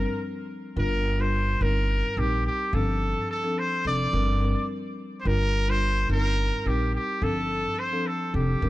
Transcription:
Already playing: marimba G3 C4 D4 A#4, trumpet A#4
0.76 upright bass G1, marimba G3 D4 F4 A#4, trumpet A#4
1.19 marimba G3 D4 F4 A#4, trumpet C5
1.61 upright bass G1, marimba G3 C4 D#4 A#4, trumpet A#4
2.17 upright bass A#1, marimba G3 C4 D#4 A#4, trumpet G4
2.46 trumpet G4
2.73 upright bass G1, marimba F3 C4 D4 A4, trumpet A4
3.30 trumpet A4
3.44 marimba F3 C4 D4 A4
3.59 trumpet C5
3.85 upright bass F1, marimba F3 C4 D4 A4, trumpet D5
4.13 upright bass G1, marimba G3 C4 D4 A#4
4.41 marimba G3 C4 D4 A#4
5.20 trumpet C5
5.25 upright bass G1, marimba G3 D4 F4 A#4, trumpet A#4
5.68 marimba G3 D4 F4 A#4, trumpet C5
6.09 upright bass G1, marimba G3 C4 D#4 A#4, trumpet A#4
6.65 upright bass A#1, marimba G3 C4 D#4 A#4, trumpet G4
6.95 trumpet G4
7.22 upright bass G1, marimba F3 C4 D4 A4, trumpet A4
7.79 trumpet C5
7.92 marimba F3 C4 D4 A4
8.07 trumpet A4
8.34 upright bass F1, marimba F3 C4 D4 A4, trumpet G4
8.62 upright bass G1, marimba G3 C4 D4 A#4

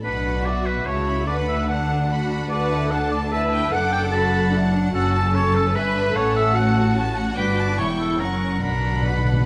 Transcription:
0.03 double bass section B1, cello section B2, viola section D4, violin section D4 F#5 B5, oboe B4
0.24 violin section F#4
0.45 viola section F#4, oboe D5, violin section E5 F#5
0.66 oboe B4
0.86 double bass section C#2, cello section C#3, violin section E4 E5 A5, viola section F#4, oboe C#5
1.08 violin section B5
1.27 double bass section D2, cello section D3, violin section D4 F#5 B5, viola section B4, oboe D5
1.48 oboe E5
1.68 viola section D4, violin section D4 F#5 A5, oboe F#5
2.09 viola section F#4, violin section F#5 B5
2.30 violin section B5
2.50 double bass section D2, cello section D3, violin section F#4 F#5 A5, viola section B4, oboe D5
2.72 violin section E4
2.91 violin section D4 A5, viola section A4, oboe F#5
3.11 oboe D5
3.31 violin section E4 A5, viola section B4, oboe E5
3.53 violin section G5
3.72 double bass section F#1, cello section F#2, violin section D4 F#5 D6, viola section A4, oboe F#5
3.92 oboe G5
4.12 violin section F#4 B5, oboe A5
4.53 viola section D4, violin section E4 A5
4.74 violin section D4
4.93 double bass section F#1, cello section F#2, violin section C#4 F#5, viola section F#4, oboe A4
5.14 violin section A5
5.34 viola section A4, oboe C#5, violin section A5
5.55 oboe A4
5.74 double bass section G1, cello section G2, violin section C#4 E5 B5, viola section B4, oboe B4
5.96 violin section D4
6.15 double bass section A1, cello section A2, violin section C#4 F#5 A5, viola section A4, oboe C#5
6.36 oboe E5
6.55 violin section C#4, viola section F#4, oboe F#5
6.75 violin section F#4
6.96 viola section C#4, violin section A5
7.16 violin section F#5
7.37 double bass section G1, cello section G2, viola section D4, oboe B4, violin section G5 D6
7.59 violin section A5
7.78 double bass section E1, cello section E2, viola section E4, violin section E4 G5 C#6, oboe C#5
7.99 oboe A4
8.19 double bass section F#1, cello section F#2, viola section C#4, violin section C#4 F#5 C#6, oboe A#4
8.42 violin section C#4
8.62 double bass section B1, timpani B2, cello section B2, viola section D4, violin section D4 F#5 B5, oboe A#4
8.71 timpani B2
8.79 timpani B2
8.86 timpani B2
8.94 timpani B2
9.02 timpani B2, oboe B4
9.10 timpani B2
9.18 timpani B2
9.25 timpani B2
9.33 timpani B2
9.41 timpani B2

